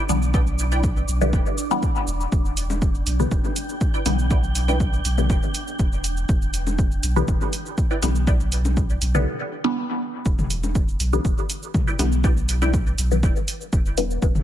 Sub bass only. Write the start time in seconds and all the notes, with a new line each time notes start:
0.09 B1
1.08 B1
1.33 D1
2.07 E1
2.32 E1
3.07 B1
3.31 E1
4.06 B1
5.05 B1
5.30 D1
5.79 E1
6.29 E1
7.03 B1
7.28 E1
8.03 B1
9.02 B1
10.26 E1
11.00 B1
11.25 E1
11.99 B1
12.98 B1
13.23 D1
13.73 E1
14.22 E1